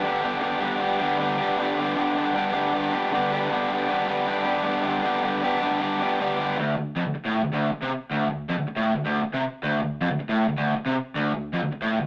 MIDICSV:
0, 0, Header, 1, 3, 480
1, 0, Start_track
1, 0, Tempo, 383387
1, 535, Time_signature, 4, 2, 24, 8
1, 15108, End_track
2, 0, Start_track
2, 0, Title_t, "Overdriven electric guitar"
2, 0, Program_c, 0, 29
2, 38, Note_on_c, 0, 43, 84
2, 51, Note_on_c, 0, 50, 82
2, 54, Note_on_c, 0, 55, 88
2, 59, Note_on_c, 0, 59, 89
2, 63, Note_on_c, 0, 62, 92
2, 78, Note_on_c, 0, 67, 105
2, 260, Note_off_c, 0, 67, 0
2, 265, Note_on_c, 0, 67, 67
2, 285, Note_off_c, 0, 62, 0
2, 290, Note_on_c, 0, 62, 62
2, 292, Note_off_c, 0, 59, 0
2, 297, Note_on_c, 0, 59, 59
2, 304, Note_off_c, 0, 55, 0
2, 309, Note_on_c, 0, 55, 61
2, 500, Note_off_c, 0, 43, 0
2, 505, Note_on_c, 0, 43, 82
2, 507, Note_off_c, 0, 50, 0
2, 521, Note_off_c, 0, 55, 0
2, 522, Note_on_c, 0, 50, 87
2, 525, Note_off_c, 0, 59, 0
2, 526, Note_on_c, 0, 55, 89
2, 530, Note_off_c, 0, 62, 0
2, 530, Note_on_c, 0, 59, 97
2, 535, Note_on_c, 0, 62, 104
2, 539, Note_off_c, 0, 67, 0
2, 544, Note_on_c, 0, 67, 97
2, 748, Note_off_c, 0, 67, 0
2, 753, Note_on_c, 0, 67, 72
2, 761, Note_off_c, 0, 62, 0
2, 766, Note_on_c, 0, 62, 69
2, 778, Note_off_c, 0, 59, 0
2, 783, Note_on_c, 0, 59, 57
2, 790, Note_off_c, 0, 55, 0
2, 795, Note_on_c, 0, 55, 53
2, 978, Note_off_c, 0, 55, 0
2, 983, Note_on_c, 0, 55, 78
2, 998, Note_off_c, 0, 59, 0
2, 1003, Note_on_c, 0, 59, 70
2, 1006, Note_off_c, 0, 62, 0
2, 1009, Note_off_c, 0, 50, 0
2, 1010, Note_off_c, 0, 67, 0
2, 1011, Note_on_c, 0, 62, 83
2, 1015, Note_on_c, 0, 67, 87
2, 1233, Note_off_c, 0, 67, 0
2, 1238, Note_on_c, 0, 67, 94
2, 1240, Note_off_c, 0, 62, 0
2, 1245, Note_on_c, 0, 62, 82
2, 1247, Note_off_c, 0, 59, 0
2, 1252, Note_on_c, 0, 59, 84
2, 1254, Note_off_c, 0, 55, 0
2, 1259, Note_on_c, 0, 55, 68
2, 1269, Note_off_c, 0, 43, 0
2, 1272, Note_on_c, 0, 50, 84
2, 1274, Note_on_c, 0, 43, 76
2, 1474, Note_off_c, 0, 55, 0
2, 1479, Note_on_c, 0, 55, 67
2, 1488, Note_off_c, 0, 59, 0
2, 1493, Note_on_c, 0, 59, 68
2, 1500, Note_off_c, 0, 62, 0
2, 1505, Note_on_c, 0, 62, 68
2, 1507, Note_off_c, 0, 67, 0
2, 1512, Note_on_c, 0, 67, 75
2, 1714, Note_off_c, 0, 67, 0
2, 1719, Note_on_c, 0, 67, 68
2, 1724, Note_off_c, 0, 62, 0
2, 1729, Note_on_c, 0, 62, 72
2, 1740, Note_off_c, 0, 59, 0
2, 1745, Note_off_c, 0, 50, 0
2, 1745, Note_on_c, 0, 59, 59
2, 1753, Note_off_c, 0, 55, 0
2, 1758, Note_on_c, 0, 55, 58
2, 1963, Note_off_c, 0, 43, 0
2, 1968, Note_on_c, 0, 43, 83
2, 1979, Note_off_c, 0, 55, 0
2, 1984, Note_on_c, 0, 50, 93
2, 1984, Note_on_c, 0, 55, 109
2, 1986, Note_off_c, 0, 59, 0
2, 1991, Note_on_c, 0, 59, 99
2, 1992, Note_off_c, 0, 62, 0
2, 1997, Note_on_c, 0, 62, 83
2, 2004, Note_off_c, 0, 67, 0
2, 2009, Note_on_c, 0, 67, 88
2, 2211, Note_off_c, 0, 67, 0
2, 2216, Note_off_c, 0, 62, 0
2, 2216, Note_on_c, 0, 67, 73
2, 2221, Note_on_c, 0, 62, 76
2, 2233, Note_off_c, 0, 59, 0
2, 2238, Note_on_c, 0, 59, 62
2, 2242, Note_off_c, 0, 55, 0
2, 2247, Note_on_c, 0, 55, 53
2, 2437, Note_off_c, 0, 50, 0
2, 2443, Note_off_c, 0, 43, 0
2, 2448, Note_on_c, 0, 43, 85
2, 2452, Note_on_c, 0, 50, 87
2, 2459, Note_off_c, 0, 55, 0
2, 2464, Note_on_c, 0, 55, 105
2, 2472, Note_off_c, 0, 62, 0
2, 2473, Note_off_c, 0, 59, 0
2, 2477, Note_on_c, 0, 62, 92
2, 2478, Note_on_c, 0, 59, 104
2, 2480, Note_off_c, 0, 67, 0
2, 2485, Note_on_c, 0, 67, 90
2, 2691, Note_off_c, 0, 67, 0
2, 2696, Note_on_c, 0, 67, 64
2, 2708, Note_off_c, 0, 62, 0
2, 2713, Note_on_c, 0, 62, 79
2, 2714, Note_off_c, 0, 59, 0
2, 2719, Note_on_c, 0, 59, 66
2, 2729, Note_off_c, 0, 55, 0
2, 2734, Note_on_c, 0, 55, 56
2, 2923, Note_off_c, 0, 55, 0
2, 2928, Note_on_c, 0, 55, 75
2, 2935, Note_off_c, 0, 59, 0
2, 2936, Note_off_c, 0, 50, 0
2, 2940, Note_on_c, 0, 59, 69
2, 2947, Note_off_c, 0, 62, 0
2, 2952, Note_on_c, 0, 62, 83
2, 2963, Note_off_c, 0, 67, 0
2, 2968, Note_on_c, 0, 67, 81
2, 3155, Note_off_c, 0, 67, 0
2, 3160, Note_on_c, 0, 67, 83
2, 3161, Note_off_c, 0, 62, 0
2, 3166, Note_on_c, 0, 62, 87
2, 3170, Note_off_c, 0, 59, 0
2, 3175, Note_on_c, 0, 59, 71
2, 3178, Note_off_c, 0, 55, 0
2, 3183, Note_on_c, 0, 55, 73
2, 3188, Note_off_c, 0, 43, 0
2, 3188, Note_on_c, 0, 50, 70
2, 3193, Note_on_c, 0, 43, 74
2, 3412, Note_off_c, 0, 55, 0
2, 3417, Note_on_c, 0, 55, 77
2, 3424, Note_off_c, 0, 59, 0
2, 3429, Note_on_c, 0, 59, 68
2, 3435, Note_off_c, 0, 62, 0
2, 3440, Note_on_c, 0, 62, 69
2, 3455, Note_off_c, 0, 67, 0
2, 3460, Note_on_c, 0, 67, 72
2, 3657, Note_off_c, 0, 67, 0
2, 3662, Note_on_c, 0, 67, 73
2, 3665, Note_off_c, 0, 50, 0
2, 3671, Note_off_c, 0, 62, 0
2, 3676, Note_on_c, 0, 62, 68
2, 3681, Note_off_c, 0, 59, 0
2, 3686, Note_on_c, 0, 59, 65
2, 3689, Note_off_c, 0, 55, 0
2, 3694, Note_on_c, 0, 55, 55
2, 3897, Note_off_c, 0, 43, 0
2, 3902, Note_on_c, 0, 43, 93
2, 3912, Note_off_c, 0, 55, 0
2, 3912, Note_on_c, 0, 50, 95
2, 3913, Note_off_c, 0, 59, 0
2, 3917, Note_on_c, 0, 55, 95
2, 3918, Note_on_c, 0, 59, 102
2, 3930, Note_off_c, 0, 62, 0
2, 3932, Note_off_c, 0, 67, 0
2, 3935, Note_on_c, 0, 62, 103
2, 3937, Note_on_c, 0, 67, 99
2, 4149, Note_off_c, 0, 67, 0
2, 4155, Note_on_c, 0, 67, 78
2, 4160, Note_off_c, 0, 62, 0
2, 4165, Note_on_c, 0, 62, 67
2, 4171, Note_off_c, 0, 59, 0
2, 4176, Note_on_c, 0, 59, 65
2, 4189, Note_off_c, 0, 55, 0
2, 4194, Note_on_c, 0, 55, 59
2, 4380, Note_off_c, 0, 50, 0
2, 4387, Note_off_c, 0, 43, 0
2, 4392, Note_on_c, 0, 43, 94
2, 4395, Note_on_c, 0, 50, 91
2, 4403, Note_off_c, 0, 59, 0
2, 4404, Note_off_c, 0, 55, 0
2, 4408, Note_on_c, 0, 59, 92
2, 4409, Note_on_c, 0, 55, 94
2, 4419, Note_off_c, 0, 62, 0
2, 4424, Note_on_c, 0, 62, 104
2, 4426, Note_off_c, 0, 67, 0
2, 4431, Note_on_c, 0, 67, 107
2, 4632, Note_off_c, 0, 67, 0
2, 4637, Note_on_c, 0, 67, 79
2, 4653, Note_off_c, 0, 62, 0
2, 4658, Note_on_c, 0, 62, 66
2, 4662, Note_off_c, 0, 59, 0
2, 4667, Note_on_c, 0, 59, 61
2, 4670, Note_off_c, 0, 55, 0
2, 4675, Note_on_c, 0, 55, 61
2, 4867, Note_off_c, 0, 55, 0
2, 4870, Note_off_c, 0, 50, 0
2, 4872, Note_on_c, 0, 55, 77
2, 4877, Note_off_c, 0, 59, 0
2, 4882, Note_on_c, 0, 59, 78
2, 4890, Note_off_c, 0, 62, 0
2, 4895, Note_on_c, 0, 62, 79
2, 4903, Note_off_c, 0, 67, 0
2, 4908, Note_on_c, 0, 67, 81
2, 5098, Note_off_c, 0, 62, 0
2, 5098, Note_off_c, 0, 67, 0
2, 5103, Note_on_c, 0, 62, 96
2, 5103, Note_on_c, 0, 67, 102
2, 5106, Note_off_c, 0, 59, 0
2, 5111, Note_on_c, 0, 59, 89
2, 5117, Note_off_c, 0, 55, 0
2, 5122, Note_on_c, 0, 55, 75
2, 5127, Note_off_c, 0, 43, 0
2, 5130, Note_on_c, 0, 50, 79
2, 5132, Note_on_c, 0, 43, 77
2, 5321, Note_off_c, 0, 55, 0
2, 5336, Note_off_c, 0, 59, 0
2, 5336, Note_on_c, 0, 55, 65
2, 5351, Note_on_c, 0, 59, 70
2, 5353, Note_off_c, 0, 67, 0
2, 5361, Note_off_c, 0, 62, 0
2, 5366, Note_on_c, 0, 62, 70
2, 5368, Note_on_c, 0, 67, 83
2, 5544, Note_off_c, 0, 67, 0
2, 5559, Note_on_c, 0, 67, 73
2, 5571, Note_off_c, 0, 59, 0
2, 5573, Note_off_c, 0, 62, 0
2, 5578, Note_off_c, 0, 55, 0
2, 5578, Note_on_c, 0, 62, 73
2, 5586, Note_on_c, 0, 59, 62
2, 5593, Note_on_c, 0, 55, 60
2, 5598, Note_off_c, 0, 50, 0
2, 5599, Note_off_c, 0, 43, 0
2, 5798, Note_on_c, 0, 43, 93
2, 5800, Note_off_c, 0, 55, 0
2, 5808, Note_off_c, 0, 59, 0
2, 5809, Note_on_c, 0, 50, 87
2, 5815, Note_on_c, 0, 55, 96
2, 5820, Note_off_c, 0, 67, 0
2, 5823, Note_on_c, 0, 59, 97
2, 5829, Note_off_c, 0, 62, 0
2, 5834, Note_on_c, 0, 62, 97
2, 5835, Note_on_c, 0, 67, 98
2, 6028, Note_off_c, 0, 67, 0
2, 6043, Note_on_c, 0, 67, 67
2, 6048, Note_off_c, 0, 62, 0
2, 6053, Note_on_c, 0, 62, 74
2, 6054, Note_off_c, 0, 59, 0
2, 6062, Note_off_c, 0, 55, 0
2, 6069, Note_on_c, 0, 59, 63
2, 6077, Note_on_c, 0, 55, 64
2, 6284, Note_off_c, 0, 43, 0
2, 6285, Note_off_c, 0, 50, 0
2, 6295, Note_off_c, 0, 55, 0
2, 6295, Note_off_c, 0, 59, 0
2, 6299, Note_on_c, 0, 43, 93
2, 6300, Note_on_c, 0, 50, 86
2, 6310, Note_on_c, 0, 55, 88
2, 6310, Note_on_c, 0, 59, 107
2, 6311, Note_off_c, 0, 62, 0
2, 6313, Note_off_c, 0, 67, 0
2, 6326, Note_on_c, 0, 62, 100
2, 6328, Note_on_c, 0, 67, 105
2, 6520, Note_off_c, 0, 67, 0
2, 6535, Note_off_c, 0, 62, 0
2, 6535, Note_on_c, 0, 67, 68
2, 6542, Note_off_c, 0, 59, 0
2, 6550, Note_on_c, 0, 62, 61
2, 6552, Note_off_c, 0, 55, 0
2, 6557, Note_on_c, 0, 59, 58
2, 6567, Note_on_c, 0, 55, 56
2, 6758, Note_off_c, 0, 55, 0
2, 6773, Note_on_c, 0, 55, 67
2, 6775, Note_off_c, 0, 59, 0
2, 6782, Note_off_c, 0, 62, 0
2, 6784, Note_off_c, 0, 43, 0
2, 6784, Note_off_c, 0, 50, 0
2, 6790, Note_on_c, 0, 59, 78
2, 6792, Note_off_c, 0, 67, 0
2, 6797, Note_on_c, 0, 62, 75
2, 6807, Note_on_c, 0, 67, 75
2, 6997, Note_off_c, 0, 67, 0
2, 7005, Note_off_c, 0, 62, 0
2, 7012, Note_on_c, 0, 67, 85
2, 7020, Note_on_c, 0, 62, 98
2, 7021, Note_off_c, 0, 59, 0
2, 7026, Note_off_c, 0, 55, 0
2, 7036, Note_on_c, 0, 59, 85
2, 7041, Note_on_c, 0, 55, 78
2, 7050, Note_on_c, 0, 43, 70
2, 7050, Note_on_c, 0, 50, 70
2, 7238, Note_off_c, 0, 55, 0
2, 7248, Note_off_c, 0, 59, 0
2, 7253, Note_on_c, 0, 55, 66
2, 7259, Note_off_c, 0, 62, 0
2, 7263, Note_on_c, 0, 59, 71
2, 7273, Note_off_c, 0, 67, 0
2, 7274, Note_on_c, 0, 62, 80
2, 7288, Note_on_c, 0, 67, 78
2, 7488, Note_off_c, 0, 67, 0
2, 7498, Note_off_c, 0, 62, 0
2, 7503, Note_on_c, 0, 67, 72
2, 7511, Note_off_c, 0, 59, 0
2, 7513, Note_on_c, 0, 62, 65
2, 7519, Note_off_c, 0, 43, 0
2, 7519, Note_off_c, 0, 50, 0
2, 7526, Note_on_c, 0, 59, 58
2, 7533, Note_off_c, 0, 55, 0
2, 7548, Note_on_c, 0, 55, 57
2, 7749, Note_on_c, 0, 43, 82
2, 7750, Note_off_c, 0, 55, 0
2, 7755, Note_off_c, 0, 59, 0
2, 7761, Note_off_c, 0, 62, 0
2, 7765, Note_on_c, 0, 50, 90
2, 7765, Note_on_c, 0, 55, 105
2, 7770, Note_off_c, 0, 67, 0
2, 7770, Note_on_c, 0, 59, 96
2, 7776, Note_on_c, 0, 62, 94
2, 7785, Note_on_c, 0, 67, 101
2, 7958, Note_off_c, 0, 67, 0
2, 7973, Note_on_c, 0, 67, 60
2, 7976, Note_off_c, 0, 62, 0
2, 7991, Note_on_c, 0, 62, 66
2, 7993, Note_off_c, 0, 59, 0
2, 7998, Note_off_c, 0, 55, 0
2, 8008, Note_on_c, 0, 59, 59
2, 8013, Note_on_c, 0, 55, 53
2, 8207, Note_off_c, 0, 67, 0
2, 8214, Note_off_c, 0, 43, 0
2, 8216, Note_off_c, 0, 62, 0
2, 8222, Note_off_c, 0, 50, 0
2, 8224, Note_off_c, 0, 59, 0
2, 8227, Note_off_c, 0, 55, 0
2, 8232, Note_on_c, 0, 38, 100
2, 8460, Note_off_c, 0, 38, 0
2, 8475, Note_on_c, 0, 38, 65
2, 8664, Note_off_c, 0, 38, 0
2, 8710, Note_on_c, 0, 41, 96
2, 8822, Note_off_c, 0, 41, 0
2, 8838, Note_on_c, 0, 38, 69
2, 8935, Note_off_c, 0, 38, 0
2, 9075, Note_on_c, 0, 45, 98
2, 9304, Note_off_c, 0, 45, 0
2, 9313, Note_on_c, 0, 38, 74
2, 9406, Note_off_c, 0, 38, 0
2, 9421, Note_on_c, 0, 38, 92
2, 9649, Note_off_c, 0, 38, 0
2, 9788, Note_on_c, 0, 48, 105
2, 9900, Note_off_c, 0, 48, 0
2, 10151, Note_on_c, 0, 38, 99
2, 10375, Note_off_c, 0, 38, 0
2, 10390, Note_on_c, 0, 38, 72
2, 10580, Note_off_c, 0, 38, 0
2, 10633, Note_on_c, 0, 41, 113
2, 10742, Note_off_c, 0, 41, 0
2, 10748, Note_on_c, 0, 38, 82
2, 10856, Note_off_c, 0, 38, 0
2, 10975, Note_on_c, 0, 45, 106
2, 11204, Note_off_c, 0, 45, 0
2, 11209, Note_on_c, 0, 38, 78
2, 11311, Note_off_c, 0, 38, 0
2, 11326, Note_on_c, 0, 38, 101
2, 11545, Note_off_c, 0, 38, 0
2, 11688, Note_on_c, 0, 48, 108
2, 11808, Note_off_c, 0, 48, 0
2, 12060, Note_on_c, 0, 38, 112
2, 12287, Note_off_c, 0, 38, 0
2, 12302, Note_on_c, 0, 38, 70
2, 12493, Note_off_c, 0, 38, 0
2, 12534, Note_on_c, 0, 41, 111
2, 12649, Note_off_c, 0, 41, 0
2, 12659, Note_on_c, 0, 38, 82
2, 12756, Note_off_c, 0, 38, 0
2, 12886, Note_on_c, 0, 45, 104
2, 13125, Note_off_c, 0, 45, 0
2, 13131, Note_on_c, 0, 38, 74
2, 13221, Note_off_c, 0, 38, 0
2, 13236, Note_on_c, 0, 38, 101
2, 13465, Note_off_c, 0, 38, 0
2, 13594, Note_on_c, 0, 48, 108
2, 13718, Note_off_c, 0, 48, 0
2, 13964, Note_on_c, 0, 38, 115
2, 14187, Note_off_c, 0, 38, 0
2, 14202, Note_on_c, 0, 38, 70
2, 14400, Note_off_c, 0, 38, 0
2, 14434, Note_on_c, 0, 41, 104
2, 14553, Note_off_c, 0, 41, 0
2, 14558, Note_on_c, 0, 38, 79
2, 14662, Note_off_c, 0, 38, 0
2, 14795, Note_on_c, 0, 45, 110
2, 15030, Note_off_c, 0, 45, 0
2, 15035, Note_on_c, 0, 38, 70
2, 15108, Note_off_c, 0, 38, 0
2, 15108, End_track
3, 0, Start_track
3, 0, Title_t, "Muted overdriven electric guitar strokes"
3, 8950, Note_on_c, 9, 29, 54
3, 9075, Note_off_c, 9, 29, 0
3, 9664, Note_on_c, 9, 29, 65
3, 9789, Note_off_c, 9, 29, 0
3, 10871, Note_on_c, 9, 29, 55
3, 10996, Note_off_c, 9, 29, 0
3, 11560, Note_on_c, 9, 29, 64
3, 11685, Note_off_c, 9, 29, 0
3, 12771, Note_on_c, 9, 29, 65
3, 12896, Note_off_c, 9, 29, 0
3, 13480, Note_on_c, 9, 29, 61
3, 13605, Note_off_c, 9, 29, 0
3, 14677, Note_on_c, 9, 29, 57
3, 14803, Note_off_c, 9, 29, 0
3, 15108, End_track
0, 0, End_of_file